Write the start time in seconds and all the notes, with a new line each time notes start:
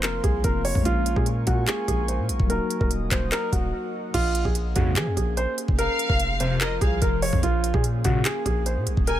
Already playing: F1 F3 A#3 C4 F4 A#4 C5 F5 C6
0.03 A#4, clap, closed hi-hat
0.24 C2 G#4, kick, closed hi-hat
0.43 F1 F3 A#3 C4 F4 A#4, kick, closed hi-hat
0.65 C#5, open hi-hat
0.75 F2, kick
0.82 A#1 G#3 A#3 F4 G#5 C#6, kick, closed hi-hat
0.87 C#4 F4
1.06 closed hi-hat
1.16 A#2 G#4, kick
1.26 closed hi-hat
1.47 A#2 F#4, kick, closed hi-hat
1.67 G#4, clap, closed hi-hat
1.88 A#1 G#4, kick, closed hi-hat
2.08 C5, closed hi-hat
2.19 A#2
2.29 A#1, closed hi-hat
2.40 D#1, kick
2.46 F#3 A#3 A#4 D#5 F#5 D#6, closed hi-hat
2.51 D#4 F#4
2.70 closed hi-hat
2.81 D#1 A#4, kick
2.91 closed hi-hat
3.11 D#1 C5, kick, clap, closed hi-hat
3.32 A#4, clap, closed hi-hat
3.52 D#1 F#4, kick, closed hi-hat
4.14 A#1 A#3 C#4 F4 G#4, kick, closed hi-hat, crash
4.35 closed hi-hat
4.45 A#1 G#4, kick
4.55 closed hi-hat
4.76 A#1 F2 G#2 C#3 F#4, kick, closed hi-hat
4.96 F3 G#4, clap, closed hi-hat
5.07 F2
5.17 A#1 G#4, kick, closed hi-hat
5.37 C5, closed hi-hat
5.58 closed hi-hat
5.68 F1, kick
5.79 F3 F4 A#4 C5 F5, closed hi-hat
5.99 closed hi-hat
6.09 F1 A#4, kick
6.20 closed hi-hat
6.40 F2 C3 C5, closed hi-hat
6.61 A#4 D#5, clap, closed hi-hat
6.81 C2 G#4 F5, kick, closed hi-hat
7.02 F1 A#4, kick, closed hi-hat
7.22 C#5, open hi-hat
7.33 F2, kick
7.43 A#1 A#3 C#4 F4 G#4, kick, closed hi-hat
7.64 closed hi-hat
7.74 A#2 G#4, kick
7.84 closed hi-hat
8.04 A#1 G#2 A#2 C#3 F#4, kick, closed hi-hat
8.25 G#4, clap, closed hi-hat
8.46 A#1 G#4, kick, closed hi-hat
8.66 C5, closed hi-hat
8.77 A#2
8.87 A#1, closed hi-hat
8.97 D#1, kick
9.07 D#3 D#4 F#4 A#4 G#5, closed hi-hat